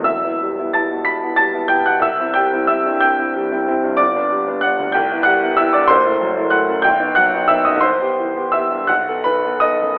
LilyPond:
<<
  \new Staff \with { instrumentName = "Grand piano" } { \time 6/8 \key c \lydian \tempo 4. = 61 <e'' e'''>4 <a'' a'''>8 <b'' b'''>8 <a'' a'''>8 <g'' g'''>16 <fis'' fis'''>16 | <e'' e'''>8 <g'' g'''>8 <e'' e'''>8 <g'' g'''>4. | <d'' d'''>4 <fis'' fis'''>8 <g'' g'''>8 <fis'' fis'''>8 <e'' e'''>16 <d'' d'''>16 | <c'' c'''>4 <fis'' fis'''>8 <g'' g'''>8 <fis'' fis'''>8 <e'' e'''>16 <dis'' dis'''>16 |
<c'' c'''>4 <e'' e'''>8 <fis'' fis'''>8 <b' b''>8 <dis'' dis'''>8 | }
  \new Staff \with { instrumentName = "Grand piano" } { \time 6/8 \key c \lydian <e,, e,>16 <b e'>16 g16 <b e'>16 <b e'>16 b,8 <b e'>16 g16 <b e'>16 <b e'>16 b,16 | c,16 <c' e'>16 g16 <c' e'>16 <c' e'>16 g,8 <c' e'>16 g16 <c' e'>16 <c' e'>16 g,16 | g,,16 <b d'>16 g16 <b d'>16 <b d'>16 d,16 c,16 <b e'>16 g16 <b e'>16 <b e'>16 g,16 | fis,,16 <a e'>16 fis16 <a e'>16 <a e'>16 fis,16 b,,16 <b dis'>16 fis16 <b dis'>16 <b dis'>16 fis,16 |
c,16 <b g'>16 e16 <b g'>16 <b g'>16 g,16 b,,16 <b a'>16 dis16 <b a'>16 <b a'>16 fis,16 | }
>>